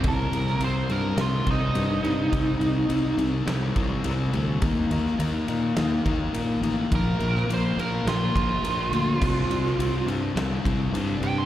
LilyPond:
<<
  \new Staff \with { instrumentName = "Lead electric guitar" } { \time 4/4 \key c \minor \tempo 4 = 105 bes'4 c''8 bes'8 f'8 ees'4.~ | ees'4. r2 r8 | r1 | bes'4 c''8 bes'8 f'8 f'4.~ |
f'4. r2 g''16 c'''16 | }
  \new Staff \with { instrumentName = "Tonewheel organ" } { \time 4/4 \key c \minor r1 | r1 | r1 | r1 |
<c' g' d''>1 | }
  \new Staff \with { instrumentName = "Overdriven electric guitar" } { \clef bass \time 4/4 \key c \minor <c g c'>8 <c g c'>8 <c g c'>8 <c g c'>8 <c g c'>8 <c g c'>8 <c g c'>8 <c g c'>8 | <c g c'>8 <c g c'>8 <c g c'>8 <c g c'>8 <c g c'>8 <c g c'>8 <c g c'>8 <c g c'>8 | <ees bes ees'>8 <ees bes ees'>8 <ees bes ees'>8 <ees bes ees'>8 <ees bes ees'>8 <ees bes ees'>8 <ees bes ees'>8 <ees bes ees'>8 | <bes, f bes>8 <bes, f bes>8 <bes, f bes>8 <bes, f bes>8 <bes, f bes>8 <bes, f bes>8 <bes, f bes>8 <bes, f bes>8 |
<c g c'>8 <c g c'>8 <c g c'>8 <c g c'>8 <c g c'>8 <c g c'>8 <c g c'>8 <c g c'>8 | }
  \new Staff \with { instrumentName = "Fingered electric bass" } { \clef bass \time 4/4 \key c \minor c,8 c,8 c,8 g,8 c,8 c,8 g,8 g,8 | c,8 c,8 c,8 c,8 c,8 c,8 c,8 d,8 | ees,8 ees,8 ees,8 bes,8 ees,8 ees,8 bes,8 a,,8 | bes,,8 bes,,8 bes,,8 bes,,8 bes,,8 bes,,8 bes,,8 d,8 |
c,8 c,8 c,8 g,8 c,8 c,8 g,8 g,8 | }
  \new DrumStaff \with { instrumentName = "Drums" } \drummode { \time 4/4 <bd cymr>8 cymr16 sn16 cymr8 cymr8 <cymr sn>8 <bd cymr>8 cymr8 cymr8 | <bd cymr>8 cymr8 cymr8 cymr8 <cymr sn>8 <bd cymr>8 cymr8 cymr8 | <bd cymr>8 cymr16 sn16 cymr8 cymr8 <cymr sn>8 <bd cymr>8 cymr8 cymr8 | <bd cymr>8 cymr16 sn16 cymr8 cymr8 <cymr sn>8 <bd cymr>8 cymr8 cymr8 |
<cymc bd>8 cymr16 sn16 cymr8 cymr8 <cymr sn>8 <bd cymr>8 cymr8 cymr8 | }
>>